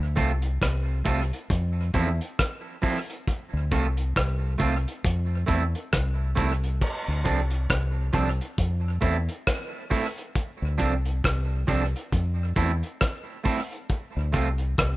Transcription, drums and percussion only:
0.17 kick, closed hi-hat
0.42 closed hi-hat
0.62 kick, cross-stick, closed hi-hat
1.05 kick, closed hi-hat
1.33 closed hi-hat
1.50 kick, closed hi-hat
1.94 kick, closed hi-hat
2.21 closed hi-hat
2.39 kick, cross-stick, closed hi-hat
2.83 kick, open hi-hat
3.10 closed hi-hat
3.27 kick, closed hi-hat
3.71 kick, closed hi-hat
3.97 closed hi-hat
4.16 kick, cross-stick, closed hi-hat
4.60 kick, closed hi-hat
4.88 closed hi-hat
5.05 kick, closed hi-hat
5.48 kick, closed hi-hat
5.75 closed hi-hat
5.93 kick, cross-stick, closed hi-hat
6.37 kick, closed hi-hat
6.64 closed hi-hat
6.81 kick, crash
7.25 kick, closed hi-hat
7.51 closed hi-hat
7.70 kick, cross-stick, closed hi-hat
8.13 kick, closed hi-hat
8.41 closed hi-hat
8.58 kick, closed hi-hat
9.02 kick, closed hi-hat
9.29 closed hi-hat
9.47 kick, cross-stick, closed hi-hat
9.91 kick, open hi-hat
10.18 closed hi-hat
10.36 kick, closed hi-hat
10.80 kick, closed hi-hat
11.05 closed hi-hat
11.24 kick, cross-stick, closed hi-hat
11.68 kick, closed hi-hat
11.96 closed hi-hat
12.12 kick, closed hi-hat
12.56 kick, closed hi-hat
12.83 closed hi-hat
13.01 kick, cross-stick, closed hi-hat
13.45 kick, open hi-hat
13.72 closed hi-hat
13.90 kick, closed hi-hat
14.33 kick, closed hi-hat
14.58 closed hi-hat
14.78 kick, cross-stick, closed hi-hat

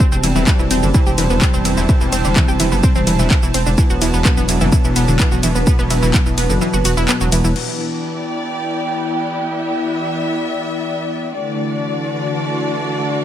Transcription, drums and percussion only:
0.12 shaker
0.24 open hi-hat, ride, shaker
0.36 shaker
0.47 kick, clap, shaker
0.59 shaker
0.71 open hi-hat, ride, shaker
0.83 shaker
0.94 kick, shaker
1.06 shaker
1.18 open hi-hat, ride, shaker
1.30 shaker
1.42 kick, clap, shaker
1.54 shaker
1.65 open hi-hat, ride, shaker
1.77 shaker
1.89 kick, shaker
2.01 shaker
2.12 open hi-hat, ride, shaker
2.25 shaker
2.36 kick, clap, shaker
2.48 shaker
2.60 open hi-hat, ride, shaker
2.72 shaker
2.83 kick, shaker
2.95 shaker
3.07 open hi-hat, ride, shaker
3.19 shaker
3.31 kick, clap, shaker
3.43 shaker
3.54 open hi-hat, ride, shaker
3.66 shaker
3.78 kick, shaker
3.90 shaker
4.02 open hi-hat, ride, shaker
4.14 shaker
4.25 kick, clap, shaker
4.37 shaker
4.49 open hi-hat, ride, shaker
4.61 shaker
4.72 kick, shaker
4.84 shaker
4.96 open hi-hat, ride, shaker
5.08 shaker
5.20 kick, clap, shaker
5.32 shaker
5.43 open hi-hat, ride, shaker
5.55 shaker
5.67 kick, shaker
5.79 shaker
5.90 open hi-hat, ride, shaker
6.03 shaker
6.14 kick, clap, shaker
6.26 shaker
6.38 open hi-hat, ride, shaker
6.50 shaker
6.61 shaker
6.73 shaker
6.85 open hi-hat, ride, shaker
6.97 shaker
7.09 clap, shaker
7.21 shaker
7.32 open hi-hat, ride, shaker
7.44 shaker
7.56 crash

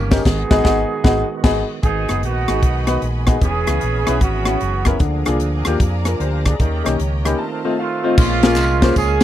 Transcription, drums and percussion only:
0.11 kick, snare, ride, tambourine
0.25 kick, snare, crash
0.51 kick, snare
0.65 kick, snare
1.04 kick, snare
1.44 kick, snare, crash
1.83 kick, closed hi-hat
2.09 cross-stick, closed hi-hat
2.23 closed hi-hat
2.48 cross-stick, closed hi-hat
2.63 kick, closed hi-hat
2.87 cross-stick, closed hi-hat
3.02 closed hi-hat
3.27 kick, cross-stick, closed hi-hat
3.42 kick, closed hi-hat
3.67 cross-stick, closed hi-hat
3.81 closed hi-hat
4.07 cross-stick, closed hi-hat
4.21 kick, closed hi-hat
4.45 cross-stick, closed hi-hat
4.61 closed hi-hat
4.85 kick, cross-stick, closed hi-hat
4.99 kick, closed hi-hat
5.25 cross-stick, closed hi-hat
5.40 closed hi-hat
5.65 cross-stick, closed hi-hat
5.80 kick, closed hi-hat
6.05 cross-stick, closed hi-hat
6.20 closed hi-hat
6.46 kick, cross-stick, closed hi-hat
6.60 kick, closed hi-hat
6.86 cross-stick, closed hi-hat
7.00 closed hi-hat
7.25 cross-stick, closed hi-hat
8.18 kick, crash, tambourine
8.43 snare, ride, tambourine
8.56 clap, ride, tambourine
8.82 kick, snare, ride, tambourine
8.96 kick, ride, tambourine

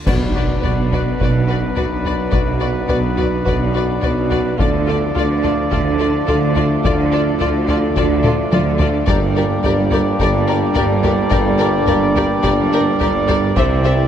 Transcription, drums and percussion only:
0.07 concert bass drum, taiko, crash
0.64 taiko low
0.92 taiko low
1.21 taiko
1.77 taiko low
2.05 taiko low
2.32 taiko
2.89 taiko low
3.19 taiko low
3.46 taiko
4.03 taiko low
4.31 taiko low
4.59 taiko
5.16 taiko low
5.44 taiko low
5.72 taiko
6.28 taiko low
6.56 taiko low
6.85 taiko
7.41 taiko low
7.68 taiko low
7.96 taiko
8.24 taiko mid
8.53 taiko high
8.80 taiko low
9.08 taiko
9.64 taiko low
9.91 taiko low
10.20 taiko
10.76 taiko low
11.04 taiko low
11.31 taiko
11.87 taiko low
12.16 taiko low
12.44 taiko
13.01 taiko low
13.29 taiko low
13.57 taiko

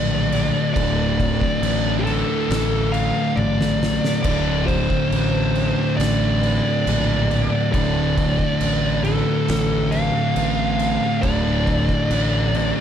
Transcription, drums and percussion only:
0.32 crash
0.76 kick, crash
1.20 kick, crash
1.41 kick
1.63 crash
2.07 crash
2.50 snare, crash
2.94 crash
3.37 high tom
3.61 snare
3.83 snare
4.05 snare
4.24 kick, crash
4.68 kick, crash
4.90 kick
5.12 crash
5.55 crash
6.00 snare, crash
6.43 crash
6.87 crash
7.31 crash
7.74 kick, crash
8.18 kick, crash
8.39 kick
8.61 crash
9.04 crash
9.48 snare, crash
9.92 crash
10.36 crash
10.79 crash
11.23 kick, crash
11.67 kick, crash
11.89 kick
12.11 crash
12.55 crash

